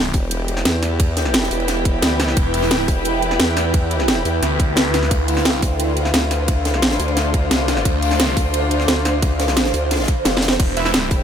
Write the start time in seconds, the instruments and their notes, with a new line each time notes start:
Already playing: detuned saw bass E1, string section E3 B3 E4 G4, ambient pad E4 B4 G5
0.05 ride
0.13 wobble bass E1, kick, open hi-hat, ride
0.31 closed hi-hat, ride
0.48 closed hi-hat, ride
0.56 snare
0.65 wobble bass E2, snare, closed hi-hat, ride
0.83 snare, open hi-hat, ride
1.00 kick, closed hi-hat, ride
1.17 snare, closed hi-hat, ride
1.25 snare, ride
1.34 snare, closed hi-hat, ride
1.42 snare, ride
1.51 wobble bass E1, open hi-hat, ride
1.60 ride
1.68 snare, closed hi-hat, ride
1.77 ride
1.85 kick, closed hi-hat, ride
2.02 wobble bass D2, snare, closed hi-hat, ride
2.20 snare, open hi-hat, ride
2.28 snare
2.37 detuned saw bass E1, kick, closed hi-hat, ride
2.54 closed hi-hat, open hi-hat
2.63 snare
2.71 snare, closed hi-hat, ride
2.80 ride
2.88 wobble bass E1, kick, open hi-hat, ride
3.05 closed hi-hat, ride
3.22 closed hi-hat, ride
3.30 snare
3.39 wobble bass E2, snare, closed hi-hat, ride
3.56 snare, open hi-hat, ride
3.74 kick, closed hi-hat, ride
3.91 closed hi-hat, ride
4.00 snare, ride
4.08 snare, closed hi-hat, ride
4.25 wobble bass E2, open hi-hat, ride
4.43 detuned saw bass D2, snare, closed hi-hat, ride
4.60 kick, closed hi-hat, ride
4.76 snare, closed hi-hat, ride
4.94 snare, open hi-hat, ride
5.03 snare
5.11 detuned saw bass D2, string section D3 A3 F4, ambient pad D4, kick, closed hi-hat, ride
5.23 ambient pad C5
5.28 closed hi-hat, open hi-hat
5.37 snare
5.45 snare, closed hi-hat, ride
5.54 ride
5.62 wobble bass D2, kick, open hi-hat, ride
5.80 closed hi-hat, ride
5.96 closed hi-hat, ride
6.05 snare
6.14 wobble bass D2, snare, closed hi-hat, ride
6.31 snare, open hi-hat, ride
6.48 kick, closed hi-hat, ride
6.65 snare, closed hi-hat, ride
6.74 snare, ride
6.82 snare, closed hi-hat, ride
6.91 snare, ride
6.99 wobble bass D2, open hi-hat, ride
7.08 ride
7.17 snare, closed hi-hat, ride
7.24 ride
7.34 kick, closed hi-hat, ride
7.51 wobble bass C2, snare, closed hi-hat, ride
7.68 snare, open hi-hat, ride
7.77 snare
7.85 detuned saw bass D2, kick, closed hi-hat, ride
8.02 closed hi-hat, open hi-hat
8.11 snare
8.19 snare, closed hi-hat, ride
8.28 ride
8.37 wobble bass D2, kick, open hi-hat, ride
8.53 closed hi-hat, ride
8.71 closed hi-hat, ride
8.80 snare
8.88 wobble bass D2, snare, closed hi-hat, ride
9.05 snare, open hi-hat, ride
9.22 kick, closed hi-hat, ride
9.39 snare, closed hi-hat, ride
9.48 snare, ride
9.56 snare, closed hi-hat, ride
9.65 snare, ride
9.74 wobble bass D2, open hi-hat, ride
9.91 snare, closed hi-hat, ride
9.95 snare, ride
10.00 snare, ride
10.04 snare, ride
10.08 kick, closed hi-hat, ride
10.25 wobble bass F1, snare, closed hi-hat, ride
10.37 snare
10.42 snare, open hi-hat, ride
10.48 snare
10.51 snare, ride
10.60 detuned saw bass E1, string section E3 B3 E4 G4, ambient pad E4, kick, closed hi-hat, crash, ride
10.77 synth stab E4 B4 E5, ambient pad B4, closed hi-hat, open hi-hat
10.85 synth stab E4 B4 E5, ambient pad G5, snare
10.94 snare, closed hi-hat, ride
11.02 ride
11.11 wobble bass E1, kick, open hi-hat, ride